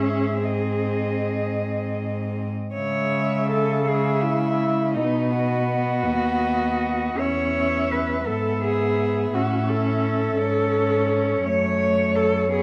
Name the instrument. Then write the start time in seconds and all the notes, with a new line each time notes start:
cello
Already playing: G#2 C#4 G#4 E5
0.44 C4 D#5
2.74 C#3 G#3 C#5 E5
3.51 A4
3.88 G#3 G#4 E5
4.23 E4
4.95 B2 B3 D#4 D#5
5.31 F#4
6.04 D#2 D#5
7.19 E2 C#4 C#5 E5
7.91 B4
8.27 G#2 B3 A4 E5
8.64 G#4
9.34 A2 C#4 F#4 E5
9.69 A4
10.38 G#2 C#4 C#5
11.44 F#2 A3 C#5
12.16 A4
12.51 B3 G#4